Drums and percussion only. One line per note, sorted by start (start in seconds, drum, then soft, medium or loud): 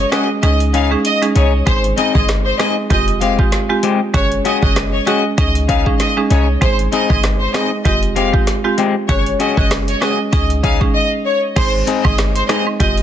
0.12 cross-stick loud
0.12 snare loud
0.12 closed hi-hat medium
0.43 closed hi-hat medium
0.60 closed hi-hat medium
0.74 closed hi-hat medium
1.05 closed hi-hat medium
1.23 closed hi-hat medium
1.36 closed hi-hat medium
1.67 kick loud
1.67 closed hi-hat medium
1.84 closed hi-hat medium
1.98 closed hi-hat medium
2.15 kick medium
2.29 cross-stick medium
2.29 snare loud
2.29 closed hi-hat medium
2.60 cross-stick loud
2.60 snare loud
2.60 closed hi-hat medium
2.90 kick medium
2.90 closed hi-hat medium
3.08 closed hi-hat medium
3.21 closed hi-hat medium
3.39 kick medium
3.52 snare medium
3.52 closed hi-hat medium
3.83 closed hi-hat medium
4.14 kick loud
4.14 closed hi-hat medium
4.32 closed hi-hat medium
4.45 closed hi-hat medium
4.63 kick loud
4.76 cross-stick medium
4.76 snare loud
4.76 closed hi-hat medium
5.07 closed hi-hat medium
5.38 kick medium
5.38 closed hi-hat medium
5.55 closed hi-hat medium
5.69 kick medium
5.69 closed hi-hat medium
5.86 kick medium
6.00 snare medium
6.00 closed hi-hat medium
6.31 closed hi-hat medium
6.62 kick loud
6.62 closed hi-hat medium
6.79 closed hi-hat medium
6.93 closed hi-hat medium
7.10 kick loud
7.23 cross-stick medium
7.23 snare loud
7.23 closed hi-hat medium
7.54 cross-stick loud
7.54 snare loud
7.54 closed hi-hat medium
7.85 kick medium
7.85 closed hi-hat medium
8.03 closed hi-hat medium
8.16 closed hi-hat medium
8.34 kick medium
8.47 snare medium
8.47 closed hi-hat medium
8.78 closed hi-hat medium
9.09 kick loud
9.09 closed hi-hat medium
9.26 closed hi-hat medium
9.40 closed hi-hat medium
9.57 kick loud
9.71 cross-stick medium
9.71 snare loud
9.71 closed hi-hat medium
9.88 closed hi-hat medium
10.02 cross-stick loud
10.02 snare loud
10.02 closed hi-hat medium
10.33 kick medium
10.33 closed hi-hat medium
10.50 closed hi-hat medium
10.64 kick medium
10.64 closed hi-hat medium
10.81 kick medium
11.56 kick loud
11.56 closed hi-hat medium
11.56 crash loud
11.87 closed hi-hat medium
11.87 cabasa medium
12.05 kick loud
12.05 high woodblock medium
12.18 cross-stick medium
12.18 snare loud
12.18 closed hi-hat medium
12.36 closed hi-hat medium
12.49 cross-stick loud
12.49 snare loud
12.49 closed hi-hat medium
12.49 cabasa medium
12.67 high woodblock medium
12.80 kick medium
12.80 closed hi-hat medium
12.98 closed hi-hat medium